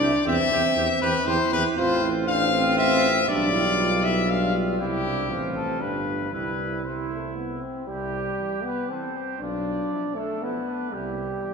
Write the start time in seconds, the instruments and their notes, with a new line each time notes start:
Already playing: euphonium D4, trumpet D5
0.00 tuba C2, french horn E4, trumpet G4
0.25 tuba E2, french horn C4, euphonium C4, trumpet G4 E5
0.51 tuba E2, french horn C4, euphonium C4, trumpet G4
0.76 tuba E2, french horn C4, trumpet G4
1.01 tuba E2, french horn C4, trumpet G4 B4
1.26 tuba E2, french horn C4, euphonium E4, trumpet G4 C5
1.51 tuba E2, french horn C4, trumpet G4 B4
1.77 tuba A1, french horn C4, euphonium F4, trumpet F4 C5
2.02 euphonium E4
2.27 french horn C4, euphonium D4, trumpet F4 F5
2.54 euphonium C4
2.78 euphonium C4, trumpet E5
3.28 tuba B1, french horn G3, euphonium D4, trumpet F4 D5
3.52 euphonium E4
3.78 euphonium F4
4.03 euphonium E4, trumpet E5
4.28 french horn G3, euphonium D4, trumpet F4 F5
4.54 euphonium F4
4.79 tuba C2, french horn G3, euphonium E4, trumpet E4 G4
5.04 euphonium D4
5.30 tuba A1, french horn F3, euphonium C4, trumpet F4
5.56 trumpet A4
5.80 tuba G1, french horn G3, euphonium D4, trumpet F4 B4
6.32 tuba C2, french horn G3, euphonium E4, trumpet E4 B4
6.84 french horn G3, trumpet E4 C5
7.10 french horn A3
7.35 french horn B3
7.62 french horn C4
7.88 tuba C2, french horn G3, trumpet E4 G4
8.14 trumpet G4
8.40 euphonium E3
8.63 french horn B3, trumpet B4
8.88 euphonium E3, french horn C4, trumpet A4 C5
9.17 trumpet G4
9.39 tuba B1, french horn D4, trumpet F4 D5
9.92 euphonium F3, trumpet E4
10.15 french horn A3, trumpet D4 A4
10.42 euphonium F3, french horn B3, trumpet E4 B4
10.69 trumpet D4
10.93 tuba C2, french horn G3, trumpet E4 G4
11.43 euphonium E3, trumpet G4